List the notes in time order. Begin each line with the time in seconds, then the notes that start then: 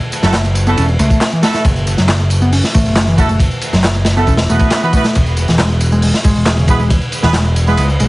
0.01 tambourine
0.12 ride, tambourine
0.23 F#1 F#3 A3 E4 F#4 A4, snare, tambourine
0.33 A3, snare, clap, ride, tambourine
0.45 ride, tambourine
0.55 ride, tambourine
0.67 A3 B3 E4 F#4 A4, tambourine
0.77 E1 C#4, ride, tambourine
0.88 tambourine
0.99 C#2 A3, ride, tambourine
1.10 kick, tambourine
1.21 A3, snare, clap, ride, tambourine
1.32 E3, ride, tambourine
1.43 A3 E4 F#4 A4, snare, ride, tambourine
1.54 A3, snare, tambourine
1.65 F#1, kick, ride, tambourine
1.76 tambourine
1.87 ride, tambourine
1.97 F#1 F#3, snare, tambourine
2.08 A3, snare, clap, ride, tambourine
2.20 tambourine
2.30 ride, tambourine
2.42 B3, tambourine
2.52 C#4, open hi-hat, tambourine
2.63 snare, tambourine
2.74 A1 A3, kick, ride, tambourine
2.85 F#1, tambourine
2.96 A3, snare, clap, ride, tambourine
3.07 E3, tambourine
3.18 A3 E4 F#4 A4, kick, ride, tambourine
3.29 A3, tambourine
3.40 kick, ride, tambourine
3.51 tambourine
3.61 ride, tambourine
3.73 F#1 F#3, snare, tambourine
3.84 A3, snare, clap, ride, tambourine
3.95 ride, tambourine
4.05 snare, ride, tambourine
4.17 A3 B3 E4 F#4 A4, tambourine
4.27 E1 C#4, kick, ride, tambourine
4.37 snare, ride, tambourine
4.49 E1 A3 B3 E4 F#4 B4, tambourine
4.59 kick, ride, tambourine
4.70 A3, snare, clap, ride, tambourine
4.82 E3 B3 E4 F#4 B4, tambourine
4.93 A3 B3 E4 F#4 B4, kick, ride, tambourine
5.04 A3, snare, tambourine
5.15 E1, kick, ride, tambourine
5.26 tambourine
5.37 ride, tambourine
5.48 E1 E3, snare, tambourine
5.59 G#3, snare, clap, ride, tambourine
5.70 tambourine
5.80 ride, tambourine
5.92 G#3, tambourine
6.02 G#3, open hi-hat, tambourine
6.14 snare, tambourine
6.24 G#1 G#3, kick, ride, tambourine
6.36 E1, tambourine
6.46 G#3, snare, clap, ride, tambourine
6.58 C#3, tambourine
6.68 G#3 B3 E4 G#4 B4, kick, ride, tambourine
6.80 G#3, tambourine
6.90 kick, ride, tambourine
7.01 tambourine
7.12 ride, tambourine
7.23 E1 E3 B3 E4 G#4 B4, snare, tambourine
7.33 G#3, snare, clap, ride, tambourine
7.45 ride, tambourine
7.56 ride, tambourine
7.67 G#3 B3 E4 G#4 B4, tambourine
7.77 C#2 G#3, ride, tambourine
7.89 tambourine
8.00 B1 G#3, ride, tambourine